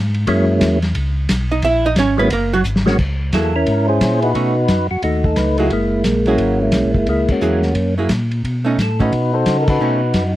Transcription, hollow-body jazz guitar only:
1.52 D#4 D#5
1.65 E4 E5
1.86 D#4 D#5
1.99 C#4 C#5
2.19 B3 B4
2.33 A#3 A#4
2.54 F#3 F#4
3.33 F#3 A#3 E4 G#4
4.35 A3 C#4 D#4
5.58 F#3 A#3 E4 G#4
6.27 F#3 A#3 E4 G#4
7.41 F#3 A#3 E4 G#4
7.98 F#3 A#3 E4 G#4
8.65 A3 C#4 D#4
9.00 A3 C#4 D#4
9.81 A3 C#4 D#4

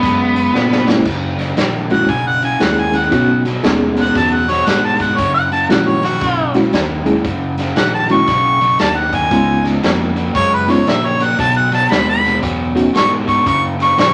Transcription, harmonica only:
1.92 F#5
2.10 G#5
2.27 F#5
2.45 G#5
2.63 F#5
2.80 G#5
2.96 F#5
4.01 F#5
4.17 A5
4.34 F#5
4.50 C#5
4.67 F#5
4.85 A5
5.01 F#5
5.18 C#5
5.34 F#5
5.53 A5
5.70 F#5
5.88 C#5
6.05 F#4
7.77 F#5
7.94 A5
8.11 C#6
8.80 A5
8.97 F#5
9.15 G#5
10.36 C#5
10.54 B4
10.71 C#5
10.89 E5
11.06 C#5
11.23 F#5
11.40 A5
11.57 F#5
11.75 A5
11.91 B5
12.10 B5
12.96 C#6
13.29 C#6
13.47 C#6
13.82 C#6
13.99 C#6

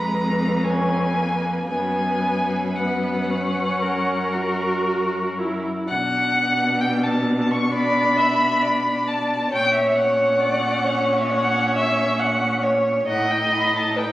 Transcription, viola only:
Already playing: G#3
0.64 C#4
1.14 A#3
1.67 B3
2.75 B3
3.30 C#4
4.34 F#4
5.39 E4
5.89 D4
9.53 C#4
13.08 D#4

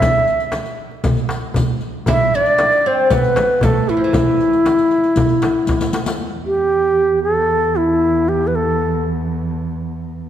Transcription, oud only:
Already playing: E4
2.08 E4
2.35 D4
2.86 C4
3.10 B3
3.63 A3
3.89 E3
3.97 F3
4.04 E3

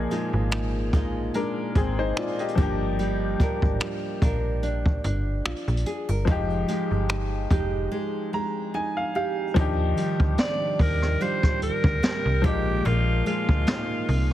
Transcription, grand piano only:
Already playing: F3 A#3 D#4 G#4
1.35 D4 A#4
1.76 C4 G#4
1.99 D#4 C5
2.18 F4 D5
2.40 G4 D#5
2.55 F3 A#3
2.60 D4 G4
6.25 F3 G#3
6.29 D#4 G4
8.34 A#5
8.75 G#5
8.97 F5
9.16 F5
9.54 F3 D4
9.58 D#4 G4
12.42 F3 A#3
12.46 G#3 D#4

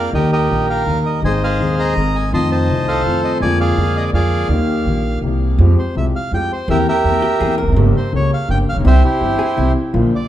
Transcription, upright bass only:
Already playing: F2
0.13 D#2
0.50 A#1
0.86 D#2
1.22 G#1
1.59 D#2
1.96 G#1
2.32 F2
2.69 C2
3.05 F2
3.41 F2
3.77 F2
4.13 F2
4.49 D#2
4.85 A#1
5.22 C2
5.58 F2
5.95 C2
6.32 F2
6.68 E2
7.04 E2
7.40 E2
7.62 E1
7.67 F1
7.72 F#1
7.76 G1
8.13 C#2
8.48 G1
8.71 A1
8.76 A#1
8.80 B1
8.85 C2
9.21 G1
9.58 C2
9.94 A#1

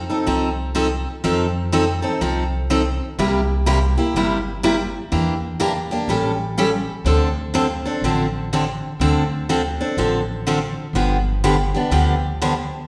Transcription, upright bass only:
0.27 C2
1.24 F2
2.21 C2
3.19 C2
4.14 G1
5.12 E2
6.08 A1
7.05 D2
8.02 A1
9.00 D2
9.97 A1
10.93 G1
11.91 D2

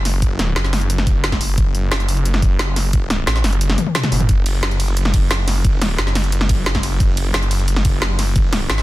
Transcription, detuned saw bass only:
0.05 F#1
0.56 F#1
1.41 F#1
1.58 F#1
1.92 F#1
2.76 F#1
3.27 A1
3.44 F#1
4.12 F#1
4.29 F#1
4.63 F#1
5.48 F#1
5.98 F#1
6.83 F#1
7.00 F#1
7.34 F#1
8.19 F#1
8.70 G#1

